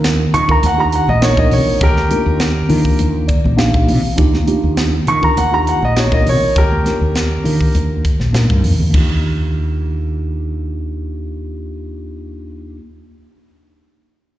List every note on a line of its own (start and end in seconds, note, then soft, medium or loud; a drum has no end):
0.00 0.25 D#2 medium
0.00 0.22 A#3 medium
0.00 0.23 D4 medium
0.00 0.23 D#4 medium
0.00 0.23 F4 medium
0.00 0.24 A#4 medium
0.04 snare loud
0.04 closed hi-hat medium
0.34 0.46 D#3 medium
0.34 0.48 C#6 medium
0.34 closed hi-hat medium
0.34 low conga medium
0.47 0.67 A#3 medium
0.47 0.67 D4 medium
0.47 0.68 D#4 medium
0.47 0.68 F4 medium
0.47 0.68 A#4 medium
0.47 0.63 A#5 medium
0.47 muted fretless electric bass stroke soft
0.47 kick medium
0.63 0.99 D#2 medium
0.63 0.79 F#5 medium
0.63 closed hi-hat medium
0.63 high conga medium
0.77 1.06 A#3 medium
0.77 1.06 D4 medium
0.77 1.06 D#4 medium
0.77 1.07 F4 medium
0.77 1.07 G4 medium
0.77 0.92 A#5 medium
0.92 1.08 F#5 medium
0.92 closed hi-hat medium
1.07 1.52 A#1 medium
1.07 1.22 D#5 medium
1.07 high conga medium
1.07 low conga medium
1.22 1.32 A#3 medium
1.22 1.32 D4 medium
1.22 1.32 D#4 medium
1.22 1.32 F4 medium
1.22 1.32 A#4 medium
1.22 1.37 C#5 medium
1.22 snare loud
1.22 closed hi-hat medium
1.37 1.84 A#3 medium
1.37 1.85 D4 medium
1.37 1.85 D#4 medium
1.37 1.85 F4 medium
1.37 1.85 A#4 medium
1.37 1.51 D#5 medium
1.37 kick medium
1.37 high conga medium
1.51 1.63 C3 medium
1.51 1.81 C#5 medium
1.51 open hi-hat medium
1.51 low conga medium
1.81 2.05 D#2 medium
1.81 2.96 G4 medium
1.81 2.97 A#4 medium
1.81 kick loud
1.81 closed hi-hat medium
1.96 snare soft
1.96 high conga medium
2.10 2.49 A#3 medium
2.10 2.49 D4 medium
2.10 2.49 D#4 medium
2.10 2.50 F4 soft
2.10 2.50 A#4 medium
2.10 closed hi-hat medium
2.10 high conga medium
2.26 2.61 D#2 medium
2.40 snare loud
2.40 closed hi-hat medium
2.68 2.82 D#3 medium
2.68 3.27 A#3 medium
2.68 3.27 D4 medium
2.68 3.27 D#4 medium
2.68 3.27 F4 medium
2.68 3.27 A#4 medium
2.68 open hi-hat medium
2.68 low conga medium
2.85 kick medium
2.99 3.36 D#2 medium
2.99 closed hi-hat medium
2.99 high conga soft
3.28 3.56 D5 medium
3.28 kick medium
3.28 closed hi-hat medium
3.44 3.90 A#1 medium
3.44 high conga medium
3.44 low conga medium
3.57 3.96 A#3 medium
3.57 3.96 D4 medium
3.57 3.97 D#4 medium
3.57 3.97 F4 medium
3.57 3.97 G4 medium
3.57 4.13 F5 medium
3.57 snare medium
3.57 closed hi-hat medium
3.74 kick medium
3.74 high conga medium
3.88 4.01 C3 medium
3.88 open hi-hat medium
3.88 low conga medium
4.16 4.42 D#2 medium
4.16 4.36 A#3 medium
4.16 4.37 D4 medium
4.16 4.37 D#4 medium
4.16 4.37 F4 medium
4.16 4.37 G4 loud
4.16 kick medium
4.16 closed hi-hat medium
4.34 snare soft
4.34 high conga medium
4.46 4.95 A#3 medium
4.46 4.96 D4 medium
4.46 4.96 D#4 medium
4.46 4.96 F4 medium
4.46 4.96 G4 medium
4.46 closed hi-hat medium
4.46 high conga medium
4.63 4.99 D#2 medium
4.77 snare medium
4.77 closed hi-hat medium
5.07 5.20 D#3 medium
5.07 5.22 C#6 medium
5.07 closed hi-hat medium
5.07 low conga medium
5.21 5.40 A#3 medium
5.21 5.41 D4 medium
5.21 5.41 D#4 medium
5.21 5.41 F4 medium
5.21 5.41 A#4 medium
5.21 5.36 A#5 medium
5.21 muted fretless electric bass stroke soft
5.21 kick medium
5.36 5.73 D#2 medium
5.36 5.51 F#5 medium
5.36 closed hi-hat medium
5.36 high conga medium
5.51 5.80 A#3 medium
5.51 5.80 D4 soft
5.51 5.80 D#4 medium
5.51 5.81 F4 medium
5.51 5.81 G4 medium
5.51 5.66 A#5 medium
5.67 5.82 F#5 medium
5.67 closed hi-hat soft
5.82 6.28 A#1 medium
5.82 5.96 D#5 medium
5.82 high conga medium
5.95 6.05 A#3 medium
5.95 6.06 D4 soft
5.95 6.06 D#4 soft
5.95 6.06 F4 medium
5.95 6.06 G4 medium
5.95 6.12 C#5 medium
5.95 snare medium
5.95 closed hi-hat medium
6.11 6.59 A#3 medium
6.11 6.59 D4 medium
6.11 6.59 D#4 medium
6.11 6.59 F4 medium
6.11 6.60 A#4 medium
6.11 6.26 D#5 medium
6.11 kick medium
6.11 high conga medium
6.26 6.38 C3 medium
6.26 6.56 C#5 medium
6.26 open hi-hat medium
6.26 low conga medium
6.56 6.80 D#2 medium
6.56 7.72 G4 medium
6.56 7.72 A#4 medium
6.56 kick medium
6.56 closed hi-hat medium
6.72 high conga medium
6.85 7.24 A#3 medium
6.85 7.24 D4 soft
6.85 7.24 D#4 soft
6.85 7.25 F4 soft
6.85 7.25 A#4 medium
6.85 snare soft
6.85 closed hi-hat medium
6.85 high conga medium
7.01 7.36 D#2 medium
7.15 snare medium
7.15 closed hi-hat medium
7.43 7.57 D#3 medium
7.43 8.02 A#3 medium
7.43 8.02 D4 medium
7.43 8.03 D#4 medium
7.43 8.03 F4 medium
7.43 8.03 A#4 medium
7.43 open hi-hat medium
7.61 muted fretless electric bass stroke soft
7.61 kick medium
7.75 8.11 D#2 medium
7.75 closed hi-hat medium
7.75 high conga soft
8.05 kick medium
8.05 closed hi-hat soft
8.19 8.33 A#1 medium
8.19 snare soft
8.19 high conga soft
8.33 8.48 A#2 medium
8.33 8.72 A#3 medium
8.33 8.72 D4 medium
8.33 8.73 D#4 medium
8.33 8.73 F4 medium
8.33 8.73 A#4 medium
8.33 snare medium
8.33 closed hi-hat medium
8.33 high conga soft
8.50 8.63 G2 medium
8.50 kick medium
8.50 high conga medium
8.63 8.77 F2 medium
8.63 open hi-hat medium
8.63 low conga medium
8.79 8.92 D#2 medium
8.79 low conga medium
8.89 12.76 A#3 medium
8.89 12.77 D4 medium
8.93 12.79 D#2 medium
8.93 12.78 D#4 medium
8.93 12.79 F4 medium
8.93 12.80 G4 medium
8.93 kick medium
8.93 crash medium
8.93 high conga medium